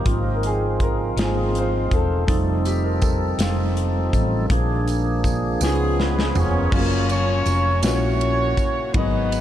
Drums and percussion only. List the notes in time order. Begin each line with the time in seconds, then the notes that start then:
0.06 kick, closed hi-hat
0.43 closed hi-hat
0.80 kick, closed hi-hat
1.18 snare, closed hi-hat
1.55 closed hi-hat
1.91 kick, closed hi-hat
2.28 kick, closed hi-hat
2.65 closed hi-hat, tambourine
3.02 kick, closed hi-hat, tambourine
3.39 snare, closed hi-hat, tambourine
3.77 closed hi-hat
4.13 kick, closed hi-hat, tambourine
4.50 kick, closed hi-hat
4.88 closed hi-hat, tambourine
5.24 kick, closed hi-hat, tambourine
5.61 snare, tambourine
6.00 snare
6.19 snare
6.35 floor tom, tambourine
6.72 kick, crash
7.09 ride bell, tambourine
7.46 ride bell, tambourine
7.83 snare, ride bell, tambourine
8.21 ride bell
8.57 kick, ride bell, tambourine
8.94 kick, ride bell
9.32 ride bell, tambourine